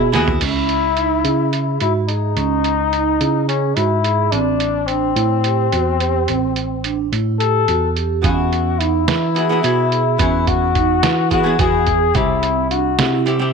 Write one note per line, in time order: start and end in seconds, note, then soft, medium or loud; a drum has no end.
0.00 0.11 B2 loud
0.00 0.28 G#4 medium
0.13 0.39 D#2 medium
0.13 0.41 B3 medium
0.13 0.41 E4 medium
0.13 0.41 F#4 medium
0.13 0.41 G#4 medium
0.13 snare medium
0.13 closed hi-hat medium
0.28 floor tom medium
0.41 1.25 C#2 medium
0.41 0.84 C#4 medium
0.41 1.77 E4 medium
0.41 closed hi-hat medium
0.41 crash medium
0.69 closed hi-hat soft
0.97 1.18 D#4 medium
0.97 closed hi-hat soft
1.24 1.76 C#3 medium
1.24 1.46 E4 medium
1.24 closed hi-hat medium
1.53 1.74 G#4 medium
1.53 closed hi-hat soft
1.80 2.33 G#2 medium
1.80 1.93 E4 medium
1.80 2.02 F#4 medium
1.80 closed hi-hat medium
2.08 3.44 D#4 medium
2.08 2.30 G#4 medium
2.08 closed hi-hat soft
2.36 3.20 C#2 medium
2.36 2.79 C#4 medium
2.36 closed hi-hat medium
2.64 closed hi-hat soft
2.93 3.14 D#4 medium
2.93 closed hi-hat soft
3.20 3.72 C#3 medium
3.20 3.42 E4 medium
3.20 closed hi-hat medium
3.48 3.77 C#4 medium
3.48 3.70 G#4 medium
3.48 closed hi-hat soft
3.75 4.28 G#2 medium
3.75 4.33 E4 medium
3.75 3.97 F#4 medium
3.75 closed hi-hat medium
4.04 4.25 G#4 medium
4.04 closed hi-hat soft
4.31 5.16 A1 medium
4.31 4.75 C4 medium
4.31 4.88 D4 medium
4.31 closed hi-hat medium
4.60 closed hi-hat medium
4.87 7.12 C4 medium
4.87 5.10 D4 medium
4.87 closed hi-hat soft
5.16 5.68 A2 medium
5.16 5.37 E4 medium
5.16 closed hi-hat medium
5.44 5.65 G4 medium
5.44 closed hi-hat medium
5.72 6.24 E2 medium
5.72 5.94 F#4 medium
5.72 closed hi-hat medium
6.00 6.22 G4 medium
6.00 closed hi-hat soft
6.28 7.12 A1 medium
6.28 6.71 C4 medium
6.28 closed hi-hat medium
6.56 closed hi-hat soft
6.84 7.05 D4 medium
6.84 closed hi-hat soft
7.12 7.64 A2 medium
7.12 7.33 E4 medium
7.12 closed hi-hat medium
7.39 7.61 G4 medium
7.39 7.91 A4 medium
7.39 closed hi-hat soft
7.67 8.20 E2 medium
7.67 7.89 F#4 medium
7.67 closed hi-hat medium
7.96 8.17 G4 medium
7.96 closed hi-hat soft
8.22 9.08 E2 medium
8.22 8.97 B3 medium
8.22 8.66 C#4 medium
8.22 8.98 E4 soft
8.22 8.98 F#4 medium
8.22 8.80 F#4 medium
8.22 8.97 G#4 medium
8.22 kick medium
8.22 closed hi-hat medium
8.53 closed hi-hat soft
8.79 9.01 D#4 medium
8.79 10.49 E4 medium
8.79 closed hi-hat soft
9.08 9.60 E3 medium
9.08 9.29 E4 medium
9.08 snare medium
9.08 closed hi-hat medium
9.35 9.45 B3 medium
9.35 9.45 E4 soft
9.35 9.45 F#4 medium
9.35 9.45 G#4 medium
9.35 9.57 G#4 medium
9.35 closed hi-hat medium
9.49 9.59 B3 medium
9.49 9.59 E4 medium
9.49 9.59 F#4 medium
9.49 9.59 G#4 medium
9.63 10.16 B2 medium
9.63 10.00 B3 medium
9.63 10.01 E4 medium
9.63 10.01 F#4 medium
9.63 9.86 F#4 medium
9.63 10.01 G#4 medium
9.63 closed hi-hat medium
9.92 10.13 G#4 medium
9.92 closed hi-hat soft
10.18 11.03 E2 medium
10.18 10.93 B3 medium
10.18 10.63 C#4 medium
10.18 10.94 E4 medium
10.18 10.94 F#4 medium
10.18 10.94 G#4 medium
10.18 kick medium
10.18 closed hi-hat medium
10.47 11.31 F#4 medium
10.47 kick medium
10.47 closed hi-hat medium
10.75 10.97 D#4 medium
10.75 kick medium
10.75 closed hi-hat medium
11.03 11.55 E3 medium
11.03 11.25 E4 medium
11.03 snare medium
11.03 closed hi-hat medium
11.31 11.40 B3 medium
11.31 11.40 E4 medium
11.31 11.40 F#4 soft
11.31 11.62 F#4 medium
11.31 11.40 G#4 medium
11.31 11.53 G#4 medium
11.31 kick medium
11.31 closed hi-hat medium
11.43 11.54 B3 medium
11.43 11.54 E4 medium
11.43 11.54 F#4 medium
11.43 11.54 G#4 medium
11.58 12.11 E2 medium
11.58 11.96 B3 medium
11.58 11.96 E4 medium
11.58 11.96 F#4 medium
11.58 11.81 F#4 medium
11.58 11.96 G#4 medium
11.58 12.17 G#4 medium
11.58 kick medium
11.58 closed hi-hat medium
11.87 12.09 G#4 medium
11.87 kick medium
11.87 closed hi-hat soft
12.14 12.99 C2 medium
12.14 12.89 G3 medium
12.14 12.89 C4 medium
12.14 12.58 C4 medium
12.14 12.89 E4 medium
12.14 12.70 E4 medium
12.14 12.89 G4 medium
12.14 kick medium
12.14 closed hi-hat medium
12.43 closed hi-hat soft
12.71 12.93 D4 medium
12.71 13.24 F#4 medium
12.71 closed hi-hat soft
12.99 13.51 C3 medium
12.99 13.21 E4 medium
12.99 snare medium
12.99 closed hi-hat medium
13.26 13.36 G3 medium
13.26 13.36 C4 medium
13.26 13.36 E4 medium
13.26 13.36 G4 medium
13.26 13.48 G4 medium
13.26 closed hi-hat soft
13.39 13.50 G3 medium
13.39 13.49 C4 medium
13.39 13.50 E4 medium
13.39 13.50 G4 medium